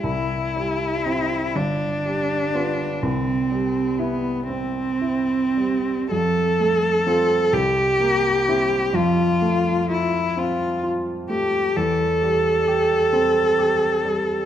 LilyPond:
<<
  \new Staff \with { instrumentName = "Cello" } { \time 6/8 \key c \major \tempo 4. = 42 e'4. d'4. | c'4 b8 c'4. | a'4. g'4. | f'4 e'8 f'8 r8 g'8 |
a'2. | }
  \new Staff \with { instrumentName = "Grand piano" } { \time 6/8 \key c \major c,8 g8 <c' e'>8 g,,8 g8 <b f'>8 | c,8 g8 e'8 c'8 e'8 g8 | f,8 a8 <c' f'>8 c,8 bes8 <c' e'>8 | f,8 a8 f'8 c'8 f'8 a8 |
e,8 g8 g'8 c'8 g'8 g8 | }
>>